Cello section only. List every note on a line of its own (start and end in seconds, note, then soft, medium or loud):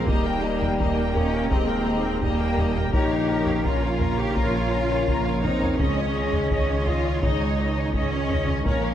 0.08 1.15 A#3 medium
1.16 1.51 C#4 loud
1.51 2.22 C4 medium
2.23 2.94 A#3 loud
2.94 3.64 G4 loud
3.65 4.18 F4 medium
4.18 4.36 G4 loud
4.36 5.43 F4 loud
5.43 5.78 D#4 loud
5.79 6.86 C#4 medium
6.87 7.22 F4 loud
7.22 7.93 D#4 medium
7.94 8.64 C#4 loud
8.65 8.94 C#4 medium